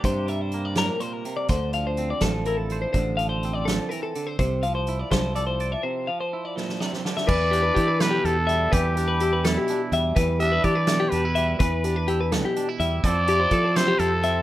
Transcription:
Already playing: clean electric guitar A#3 D4 G4
0.04 fingered electric bass G2, clean electric guitar C3 C5, kick, closed hi-hat
0.27 clean electric guitar G3 E5, closed hi-hat
0.41 clean electric guitar C5
0.52 clean electric guitar A#3, closed hi-hat
0.65 clean electric guitar D5
0.75 clean electric guitar A2 A#4, snare, closed hi-hat
1.00 clean electric guitar A#2 C5, closed hi-hat
1.13 clean electric guitar A#4
1.25 clean electric guitar C3, closed hi-hat
1.37 clean electric guitar D5
1.48 fingered electric bass D2, clean electric guitar D3 C5, kick, closed hi-hat
1.73 clean electric guitar F3 F5, closed hi-hat
1.87 clean electric guitar C5
1.97 clean electric guitar C4, closed hi-hat
2.10 clean electric guitar D5
2.21 fingered electric bass A1, clean electric guitar F3 A4, kick, snare, closed hi-hat
2.45 clean electric guitar E4 A#4, closed hi-hat
2.57 clean electric guitar A4
2.70 clean electric guitar C5, closed hi-hat
2.82 clean electric guitar C5
2.93 fingered electric bass A1, clean electric guitar D3 C5, kick, closed hi-hat
3.17 clean electric guitar F3 F5, closed hi-hat
3.29 clean electric guitar C5
3.43 clean electric guitar C4, closed hi-hat
3.54 clean electric guitar D5
3.65 clean electric guitar F3 A4, snare, closed hi-hat
3.89 clean electric guitar E3 A#4, closed hi-hat
4.03 clean electric guitar A4
4.15 clean electric guitar D3, closed hi-hat
4.27 clean electric guitar C5
4.39 fingered electric bass C2, clean electric guitar C3 C5, kick, closed hi-hat
4.63 clean electric guitar F3 F5, closed hi-hat
4.75 clean electric guitar C5
4.87 clean electric guitar E4, closed hi-hat
4.99 clean electric guitar D5
5.11 fingered electric bass C2, clean electric guitar F3 C5, kick, snare, closed hi-hat
5.35 clean electric guitar A4 D5, closed hi-hat
5.47 clean electric guitar C5
5.60 clean electric guitar D5, closed hi-hat
5.72 clean electric guitar E5
5.83 clean electric guitar C3 C5
6.07 clean electric guitar F3 F5
6.21 clean electric guitar C5
6.33 clean electric guitar E4
6.45 clean electric guitar D5
6.56 clean electric guitar A#2 C5, snare
6.69 snare
6.80 clean electric guitar C3 D5, snare
6.93 clean electric guitar C5, snare
7.05 clean electric guitar D3, snare
7.17 clean electric guitar E5, snare
7.27 fingered electric bass E2, clean electric guitar E3 B4, trumpet D5, kick, crash
7.51 clean electric guitar D4 G4, closed hi-hat
7.63 clean electric guitar B4
7.75 fingered electric bass E3, clean electric guitar E4 G4, kick, closed hi-hat
7.88 clean electric guitar B4
7.99 clean electric guitar B2 A4, trumpet B4, snare, closed hi-hat
8.11 clean electric guitar G4
8.24 fingered electric bass E2, clean electric guitar E4, trumpet A4, closed hi-hat
8.47 clean electric guitar G3 E5, closed hi-hat
8.72 fingered electric bass E2, clean electric guitar E3 B4, trumpet G4, kick, closed hi-hat
8.96 clean electric guitar D4 G4, closed hi-hat
9.08 clean electric guitar B4
9.20 clean electric guitar E4 G4, closed hi-hat
9.33 clean electric guitar B4
9.44 clean electric guitar B2 A4, trumpet E4, snare, closed hi-hat
9.58 clean electric guitar G4
9.68 clean electric guitar D4, closed hi-hat
9.92 fingered electric bass E2, clean electric guitar G3 E5, closed hi-hat
10.16 fingered electric bass E2, clean electric guitar E3 B4, kick, closed hi-hat
10.39 clean electric guitar D4 G4, trumpet E5, closed hi-hat
10.52 clean electric guitar B4
10.64 fingered electric bass E3, clean electric guitar E4 G4, trumpet D5, kick, closed hi-hat
10.75 clean electric guitar B4
10.87 clean electric guitar B2 A4, snare, closed hi-hat
11.00 clean electric guitar G4
11.10 fingered electric bass E2, clean electric guitar D4, trumpet B4, closed hi-hat
11.25 clean electric guitar E4
11.35 clean electric guitar G3 E5, closed hi-hat
11.59 fingered electric bass E2, clean electric guitar E3 B4, trumpet B4, kick, closed hi-hat
11.84 clean electric guitar D4 G4, closed hi-hat
11.96 clean electric guitar B4
12.08 clean electric guitar E4 G4, closed hi-hat
12.21 clean electric guitar B4
12.32 clean electric guitar B2 A4, snare, closed hi-hat
12.45 clean electric guitar G4
12.56 clean electric guitar D4, closed hi-hat
12.69 clean electric guitar E4
12.80 fingered electric bass E2, clean electric guitar G3 E5, closed hi-hat
13.04 fingered electric bass F2, clean electric guitar F3 C4 E4 A4 C5, trumpet D5, kick, closed hi-hat
13.28 clean electric guitar E4 G4, closed hi-hat
13.40 clean electric guitar C5
13.51 fingered electric bass F3, clean electric guitar A4, kick, closed hi-hat
13.64 clean electric guitar C5
13.76 clean electric guitar C3 A4, trumpet C5, snare, closed hi-hat
13.88 clean electric guitar G4
13.99 fingered electric bass F2, clean electric guitar E4, trumpet A4, closed hi-hat
14.23 clean electric guitar C4 E5, closed hi-hat

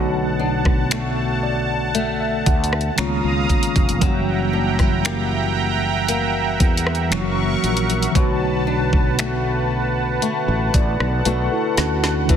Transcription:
Already playing: fretless electric bass B1, nylon-string guitar B2 D4 F#4, tine electric piano D3 A3 B3 F#4 C#5, analog synth pad F#5 A5
0.39 nylon-string guitar D4
0.65 kick, cross-stick
0.91 nylon-string guitar A3 D4 F#4, finger snap, closed hi-hat
1.43 tine electric piano D5
1.94 nylon-string guitar A3, tine electric piano E5, closed hi-hat
2.20 tine electric piano E5
2.46 fretless electric bass D2, tine electric piano F#5, kick, closed hi-hat
2.64 closed hi-hat
2.73 cross-stick
2.81 closed hi-hat
2.96 fretless electric bass C#2, nylon-string guitar C#3, tine electric piano D#3 G#3 A#3 B3 A#5, analog synth pad F5 A#5 D#6, finger snap, closed hi-hat
3.00 tine electric piano F4
3.24 fretless electric bass C#2
3.49 kick, closed hi-hat
3.63 closed hi-hat
3.76 fretless electric bass F1, kick, closed hi-hat
3.89 closed hi-hat
3.97 tine electric piano E3 G3
4.01 fretless electric bass F#1, nylon-string guitar F#3, tine electric piano A#3 C#4, analog synth pad E5 F#5 G5 A#5, kick, closed hi-hat
4.06 tine electric piano F#4
4.53 nylon-string guitar D4
4.79 nylon-string guitar E4, kick, cross-stick
5.05 nylon-string guitar A#3 E4 G4, finger snap, closed hi-hat
6.08 nylon-string guitar A#3, closed hi-hat
6.60 fretless electric bass E2, kick, closed hi-hat
6.77 closed hi-hat
6.87 cross-stick
6.95 closed hi-hat
7.10 fretless electric bass F#1, tine electric piano E3 F#3 A#3 C#4, nylon-string guitar F#3, analog synth pad A#4 C#6, finger snap, closed hi-hat
7.14 tine electric piano E4
7.21 tine electric piano F#4
7.64 fretless electric bass A#1, closed hi-hat
7.77 closed hi-hat
7.90 closed hi-hat
8.03 closed hi-hat
8.11 tine electric piano D3 A3
8.15 fretless electric bass B1, nylon-string guitar B2, tine electric piano B3 C#5, analog synth pad B4 A5, kick, closed hi-hat
8.19 tine electric piano F#4
8.67 nylon-string guitar D4
8.93 kick
9.19 nylon-string guitar A3 D4 F#4, finger snap, closed hi-hat
10.22 nylon-string guitar A3, closed hi-hat
10.48 fretless electric bass A1
10.74 fretless electric bass A1, tine electric piano D5, kick, closed hi-hat
11.00 fretless electric bass B1, cross-stick
11.25 fretless electric bass B1, nylon-string guitar A3 D4 F#4, tine electric piano F#4 B4 F#5, closed hi-hat
11.52 tine electric piano E4 A4
11.77 fretless electric bass D2, tine electric piano C#4 F#4 A5, snare, closed hi-hat
12.03 tine electric piano A3 D4, snare
12.25 tine electric piano E3 G3, analog synth pad G3 E5, kick
12.29 fretless electric bass E1, nylon-string guitar E3, tine electric piano B3 D4, closed hi-hat
12.34 tine electric piano E4

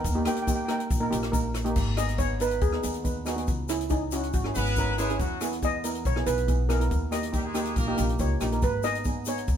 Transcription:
Already playing: steel pan A#4 G5
0.04 upright bass D#2, kick, closed hi-hat, shaker
0.15 steel pan A#3 D#4 G4
0.25 steel pan A#3 D#4 G4 A#4 G5, cross-stick, closed hi-hat, shaker
0.35 steel pan G5, closed hi-hat
0.42 steel pan G5
0.47 steel pan A#3 D#4 G4 G5, kick, closed hi-hat, shaker
0.56 steel pan G5
0.65 steel pan A#3 D#4 A#4 G5, cross-stick, closed hi-hat
0.72 steel pan G5
0.79 steel pan G5, closed hi-hat
0.90 upright bass A#1, kick, closed hi-hat, shaker
1.00 steel pan A#3 D#4 A#4
1.10 upright bass A#1, steel pan A#3 D#4 G4, closed hi-hat, shaker
1.23 cross-stick, closed hi-hat
1.32 steel pan A#3 D#4 A#4, kick, closed hi-hat, shaker
1.54 cross-stick, closed hi-hat, shaker
1.64 steel pan A#3 D#4 G4, closed hi-hat
1.76 upright bass G#1, kick, crash, shaker
1.97 steel pan B3 D#4 G#4 D#5, cross-stick, closed hi-hat, shaker
2.08 closed hi-hat
2.18 steel pan B3 D#4 G#4 C#5, kick, closed hi-hat, shaker
2.40 steel pan B3 D#4 A#4 B4, closed hi-hat, shaker
2.51 closed hi-hat
2.61 upright bass D#2, steel pan G#4, kick, closed hi-hat, shaker
2.72 steel pan B3 D#4 A#4, cross-stick
2.83 upright bass D#2, steel pan B3 D#4 G#4, closed hi-hat, shaker
2.94 closed hi-hat, shaker
3.04 steel pan B3 D#4 B4, kick, closed hi-hat, shaker
3.26 steel pan B3 D#4 F#4 G#4, cross-stick, closed hi-hat, shaker
3.36 steel pan B3 D#4 G#4, closed hi-hat, shaker
3.47 upright bass C#2, kick, closed hi-hat, shaker
3.69 steel pan C#4 E4 G#4, cross-stick, closed hi-hat, shaker
3.80 closed hi-hat, shaker
3.89 steel pan C#4 D#4 E4 G#4, kick, closed hi-hat, shaker
4.11 steel pan C#4 E4 F#4, closed hi-hat, shaker
4.23 closed hi-hat
4.33 upright bass G#1, steel pan F#4, kick, closed hi-hat, shaker
4.44 steel pan C#4 E4 G#4, cross-stick
4.55 upright bass G#1, horn section B3 B4, steel pan C#4 E4 G#4, closed hi-hat, shaker
4.66 closed hi-hat, shaker
4.76 steel pan C#4 E4 A#4, kick, closed hi-hat, shaker
4.97 horn section G#3 G#4, steel pan C#4 E4 B4, cross-stick, closed hi-hat, shaker
5.10 steel pan C#4 E4 G#4, closed hi-hat, shaker
5.19 upright bass E2, horn section F#3 F#4, kick, closed hi-hat, shaker
5.41 steel pan B3 E4 G#4, cross-stick, closed hi-hat, shaker
5.53 closed hi-hat, shaker
5.62 steel pan B3 E4 G#4 D#5, kick, closed hi-hat, shaker
5.84 steel pan B3 E4 A#4, closed hi-hat, shaker
5.95 closed hi-hat, shaker
6.05 upright bass B1, steel pan C#5, kick, closed hi-hat, shaker
6.16 steel pan B3 E4 G#4, cross-stick
6.26 upright bass B1, steel pan B3 E4 G#4 B4, closed hi-hat, shaker
6.38 closed hi-hat, shaker
6.48 steel pan B3 E4 G#4, kick, closed hi-hat, shaker
6.69 steel pan B3 E4 G#4 A#4, cross-stick, closed hi-hat, shaker
6.79 steel pan B3 E4 A#4, closed hi-hat
6.91 upright bass D#2, kick, closed hi-hat, shaker
7.11 steel pan A#3 D#4 G4 D#5, cross-stick, closed hi-hat, shaker
7.23 closed hi-hat, shaker
7.32 horn section G3 G4, steel pan A#3 D#4 G4, kick, closed hi-hat, shaker
7.45 horn section G#3 G#4
7.54 steel pan A#3 D#4 G4, cross-stick, closed hi-hat, shaker
7.65 closed hi-hat, shaker
7.76 upright bass A#1, horn section A#3 A#4, kick, closed hi-hat, shaker
7.87 steel pan A#3 D#4 G4
7.97 upright bass A#1, steel pan A#3 D#4 G4, closed hi-hat, shaker
8.09 closed hi-hat
8.19 upright bass C#2, steel pan A#3 D#4 G4 C#5, kick, closed hi-hat, shaker
8.41 upright bass A#1, steel pan A#3 D#4 G4, cross-stick, closed hi-hat, shaker
8.51 steel pan A#3 D#4 A#4, closed hi-hat
8.62 upright bass G#1, steel pan B4, kick, closed hi-hat, shaker
8.83 steel pan B3 D#4 G#4 D#5, cross-stick, closed hi-hat, shaker
8.94 closed hi-hat, shaker
9.04 steel pan B3 D#4 G#4, kick, closed hi-hat, shaker
9.25 steel pan B3 D#4 G#4 C#5, closed hi-hat, shaker
9.37 closed hi-hat, shaker
9.48 upright bass D#2, kick, closed hi-hat, shaker

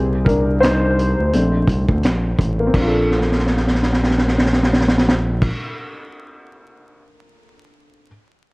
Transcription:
Already playing: analog synth bass C2, upright piano A#3 C4 G4 G#4
0.25 upright piano D4 A#4, kick
0.29 closed hi-hat
0.60 upright piano D#4 C5, snare, closed hi-hat
0.64 finger snap
0.99 closed hi-hat
1.20 analog synth bass D2
1.33 analog synth bass A#1, upright piano A3 C4 D4, closed hi-hat
1.67 analog synth bass C2, kick, closed hi-hat
1.89 analog synth bass D2, kick
2.03 analog synth bass A#1, finger snap, snare, closed hi-hat
2.39 analog synth bass A1, kick, closed hi-hat
2.60 upright piano A#3
2.67 upright piano C4
2.74 analog synth bass A#1, upright piano D4, kick, crash
2.81 upright piano F4
2.88 upright piano A4
3.11 snare
3.21 snare
3.32 snare
3.39 snare
3.46 snare
3.57 snare
3.67 snare
3.75 snare
3.82 snare
3.93 snare
4.03 snare
4.10 snare
4.18 snare
4.28 snare
4.38 snare
4.46 snare
4.53 snare
4.63 snare
4.73 snare
4.81 snare
4.88 snare
4.98 snare
5.08 snare
5.42 kick, crash

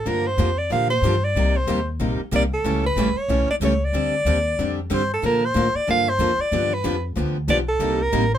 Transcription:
0.06 upright bass G2, steel-string acoustic guitar D3 F3 A#3 D4 G4, soprano saxophone A#4
0.27 soprano saxophone C5
0.37 upright bass F2, steel-string acoustic guitar D3 F3 A#3 D4 G4
0.59 soprano saxophone D5
0.70 upright bass A#2, steel-string acoustic guitar D3 F3 A#3 D4 G4, soprano saxophone F5
0.90 soprano saxophone C5
1.02 upright bass G2, steel-string acoustic guitar D3 F3 A#3 D4
1.06 steel-string acoustic guitar G4
1.24 soprano saxophone D5
1.35 upright bass C2, steel-string acoustic guitar C3 G3 A#3 D#4 G4
1.57 soprano saxophone C5
1.67 upright bass D#2, steel-string acoustic guitar C3 G3 A#3 D#4 G4
2.00 upright bass A#1, steel-string acoustic guitar C3 G3 A#3 D#4 G4
2.19 muted upright bass stroke
2.31 upright bass C2, steel-string acoustic guitar C3 G3 A#3 D#4 G4
2.36 soprano saxophone D5
2.54 soprano saxophone A4
2.64 upright bass C#2, steel-string acoustic guitar C#3 E3 G3 A3 C#4 E4 G4 A4 C#5
2.86 soprano saxophone B4
2.96 upright bass A1, steel-string acoustic guitar C#3 E3 G3 A3 C#4 E4 G4 A4 C#5
3.16 soprano saxophone C#5, muted upright bass stroke
3.28 upright bass B1, steel-string acoustic guitar C#3 E3 G3 A3 C#4 E4 G4 A4 C#5
3.48 soprano saxophone D5, muted upright bass stroke
3.60 upright bass C#2, steel-string acoustic guitar C#3 E3 G3 A3 C#4 E4 G4 A4 C#5
3.65 soprano saxophone C#5
3.85 soprano saxophone D5
3.93 upright bass D2, steel-string acoustic guitar D3 G3 C4 D4 G4
4.25 upright bass D#2, steel-string acoustic guitar D3 G3 C4 D4 G4
4.59 upright bass F2, steel-string acoustic guitar D3 G3 C4 D4 G4
4.90 upright bass G2, steel-string acoustic guitar D3 G3 C4 D4 G4, soprano saxophone C5
5.14 soprano saxophone A4
5.22 upright bass A#2, steel-string acoustic guitar D3 F3 A#3 D4 A4, soprano saxophone A#4
5.45 soprano saxophone C5
5.54 upright bass A2, steel-string acoustic guitar D3 F3 A#3 D4 A4
5.75 soprano saxophone D5, muted upright bass stroke
5.87 upright bass G2, steel-string acoustic guitar D3 F3 A#3 D4 A4, soprano saxophone F5
6.09 soprano saxophone C5
6.19 upright bass F2, steel-string acoustic guitar D3 F3 A#3 D4 A4
6.38 soprano saxophone D5, muted upright bass stroke
6.52 upright bass G2, steel-string acoustic guitar D3 F3 B3 D4 G4
6.74 soprano saxophone B4
6.84 upright bass F2, steel-string acoustic guitar D3 F3 B3 D4 G4
7.16 upright bass D2, steel-string acoustic guitar D3 F3 B3 D4 G4
7.48 upright bass B1, steel-string acoustic guitar D3 F3 B3 D4 G4, soprano saxophone D5
7.69 soprano saxophone A4
7.79 upright bass C2, steel-string acoustic guitar C3 G3 A#3 D#4 G4
8.02 soprano saxophone A#4
8.12 upright bass A1, steel-string acoustic guitar C3 G3 A#3 D#4 G4
8.34 soprano saxophone C5

